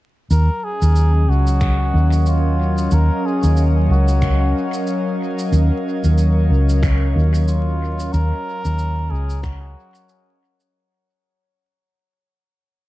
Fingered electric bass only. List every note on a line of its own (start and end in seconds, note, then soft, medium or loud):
0.30 0.47 D#2 medium
0.82 1.26 D#2 medium
1.28 1.91 C#2 medium
1.94 2.89 D#2 medium
2.92 3.08 D#2 medium
3.43 3.87 D#2 medium
3.89 4.52 C#2 medium
5.52 5.69 D#2 loud
6.04 6.48 D#2 medium
6.50 7.13 C#2 medium
7.16 8.11 D#2 medium
8.14 8.30 D#2 loud
8.65 9.09 D#2 medium
9.11 9.74 C#2 medium